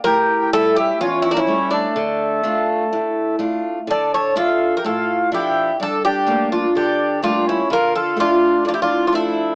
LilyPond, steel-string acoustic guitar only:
\new Staff \with { instrumentName = "Steel-string acoustic guitar" } { \time 4/4 \key d \minor \tempo 4 = 126 a,4 <g a cis'>4 e,4 <g a cis'>4 | d4 <a d' f'>4 a,4 <a d' f'>4 | d4 <d' f' e''>4 a,4 <f d' e'>4 | g,4 <g a bes>4 d4 <g a bes>4 |
d4 <a d' f'>4 a,4 <f a d'>4 | }